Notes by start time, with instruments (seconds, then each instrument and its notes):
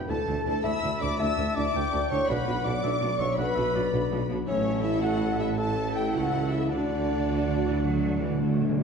Already playing: harp E3 E4 G4 B4 E5 G5, oboe G5
0.00 harp B3
0.08 double bass section D2, cello section D2, tuba D2, harp D3, viola section D4 E4, french horn section A4, oboe A5, violin section A5, flute A5
0.19 harp A3
0.26 double bass section D2, cello section D2, tuba D2, viola section D4 E4, harp D4
0.37 harp E4
0.45 double bass section D2, tuba D2, cello section D2, viola section D4 E4, french horn section A4, flute A5, violin section A5
0.55 harp D5
0.63 double bass section D2, tuba D2, cello section D2, viola section D4 E4, french horn section E5, oboe B5, violin section E6, flute E6
0.73 harp A5
0.82 double bass section D2, tuba D2, cello section D2, viola section D4 E4
0.92 harp A4
1.00 double bass section D2, tuba D2, cello section D2, viola section D4 E4, harp E4, french horn section D5, violin section D6, flute D6
1.10 harp A3
1.18 double bass section D2, cello section D2, tuba D2, harp D3, viola section D4 E4, french horn section E5, oboe A5, violin section E6, flute E6
1.28 harp D4
1.37 double bass section D2, tuba D2, cello section D2, harp A3, viola section D4 E4
1.46 harp E4
1.55 double bass section D2, cello section D2, tuba D2, viola section D4 E4, harp A4, french horn section D5, flute D6, violin section D6
1.74 double bass section D2, tuba D2, cello section D2, viola section D4 E4, harp E5, oboe G5
1.93 tuba D2, cello section D2, double bass section D2, viola section D4 E4, harp E5
2.10 tuba D2, double bass section D2, cello section D2, viola section D4 E4, harp E4, french horn section C#5, violin section C#6, flute C#6
2.20 harp A3
2.28 double bass section B1, tuba B1, harp B2, cello section B2, viola section D4 F#4, french horn section B4, oboe F#5, flute B5, violin section B5
2.39 harp F#3
2.47 double bass section B1, tuba B1, cello section B2, harp D4, viola section D4 F#4
2.57 harp F#4
2.64 tuba B1, double bass section B1, cello section B2, viola section D4 F#4, french horn section D5, flute D6, violin section D6
2.75 harp F#4
2.83 tuba B1, double bass section B1, cello section B2, viola section D4 F#4, oboe E5, harp F#5
3.01 tuba B1, double bass section B1, cello section B2, viola section D4 F#4, oboe D5, harp F#5
3.12 harp D5
3.19 double bass section B1, tuba B1, cello section B2, viola section D4 F#4, harp F#4, french horn section C#5, oboe E5, flute C#6, violin section C#6
3.29 harp F#3
3.37 double bass section B1, tuba B1, cello section B2, viola section D4 F#4, french horn section B4, oboe F#5, violin section B5, flute B5
3.47 harp D4
3.55 tuba B1, double bass section B1, cello section B2, harp F#3, viola section D4 F#4, oboe E5
3.74 double bass section B1, tuba B1, cello section B2, viola section D4 F#4, oboe D5
3.84 harp F#4
3.92 double bass section B1, tuba B1, cello section B2, viola section D4 F#4, harp F#5
4.02 harp D6
4.11 tuba B1, double bass section B1, cello section B2, viola section D4 F#4, harp F#5
4.29 double bass section B1, tuba B1, cello section B2, viola section D4 F#4, harp F#4
4.39 harp F#3
4.46 tuba A1, double bass section A1, timpani A2, harp A2, cello section A2, french horn section C#4, viola section E4 A4, flute C#5, violin section C#5, oboe E5
4.57 harp E3
4.66 harp A3
4.75 harp A4
4.83 french horn section E4, flute E5, violin section E5, harp E5
5.01 french horn section F#4, flute F#5, violin section F#5, oboe F#5, harp A5
5.13 harp E6
5.21 harp A5
5.30 harp E5
5.39 french horn section E4, harp A4, violin section E5, flute E5
5.49 harp E3
5.57 harp A2, viola section E4 A4, french horn section A4, oboe E5, violin section A5, flute A5
5.67 harp A3
5.77 harp E3
5.95 french horn section G4, harp E5, violin section G5, flute G5
6.05 harp A4
6.13 tuba C#2, double bass section C#2, cello section C#3, french horn section F#4, flute F#5, violin section F#5, harp A5
6.23 harp E6
6.42 harp E5
6.51 french horn section E4, violin section E5, flute E5
6.61 harp E3
6.69 double bass section D2, tuba D2, timpani D3, cello section D3, harp D3, french horn section D4, viola section D4 F#4, violin section D5, flute D5, oboe F#5
6.78 timpani D3, harp D4
6.86 timpani D3, harp A3
6.94 timpani D3
6.99 timpani D3, harp F#4
7.16 timpani D3, harp A4
7.24 timpani D3, cello section D3, harp F#5
7.32 timpani D3
7.36 timpani D3, harp D6
7.47 timpani D3
7.55 timpani D3
7.65 cello section E3
7.71 timpani D3, harp D4
7.78 timpani D3
7.84 harp D3, timpani D3, cello section F#3
7.93 timpani D3, harp A3
8.00 timpani D3, harp D4
8.08 timpani D3
8.12 timpani D3, harp F#4
8.22 timpani D3, cello section E3, harp D5
8.31 timpani D3, harp A4
8.39 timpani D3, cello section A3, harp F#5
8.46 timpani D3, harp D6
8.54 timpani D3
8.59 timpani D3, harp F#5
8.69 timpani D3, harp D5
8.77 timpani D3, cello section G3, harp F#4